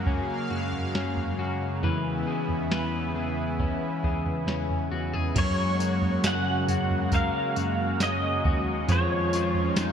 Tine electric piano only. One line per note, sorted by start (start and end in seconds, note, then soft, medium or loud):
0.00 0.21 F#2 medium
0.50 0.89 F#2 medium
0.95 1.34 F#2 medium
1.39 1.83 F#2 medium
1.83 2.22 E2 medium
2.49 2.69 E2 medium
2.71 3.10 E2 loud
3.15 3.74 E2 medium
4.04 4.43 E2 medium
4.47 4.86 E2 medium
4.91 5.31 E2 medium
5.36 6.14 F#2 loud
6.24 6.63 F#2 medium
6.68 7.27 F#2 loud
7.56 7.95 F#2 medium
8.00 8.39 F#2 medium
8.45 8.84 D#2 loud
8.88 9.66 F2 loud
9.77 9.92 F2 medium